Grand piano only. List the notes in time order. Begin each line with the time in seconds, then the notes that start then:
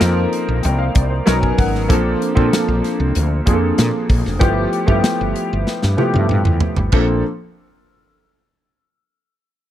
Already playing: F3 A#3 C4 D#4 A4 A#4
0.63 G5
0.79 F5
0.95 D5
1.10 C5
1.26 F#3 B3 C#4 D#4 A#4 A#5
1.41 G#5
1.58 F#5
1.88 F3 A#3 C4 D4 A4
2.35 F3 A#3 C4 D4 A4
3.46 F3 A#3 C4 D4 G#4
3.53 A4
4.39 F3 A3 B3 E4 G4
4.86 F3 A3 B3 E4 G4
5.97 F3 A3 B3 E4 G4
6.93 F3 A#3 C4 D4 A4